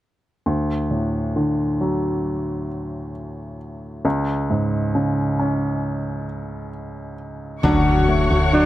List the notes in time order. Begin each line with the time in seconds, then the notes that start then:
0.46 D2
0.91 A2
1.36 D3
1.81 F#3
4.05 C#2
4.50 G#2
4.95 C#3
5.39 C#4
7.63 D2 D3 F#3 A3 C#4 D4 F#4 C#5 F#5 C#6, impact
8.08 A3
8.31 D2
8.52 F#3 A3 D4 F#4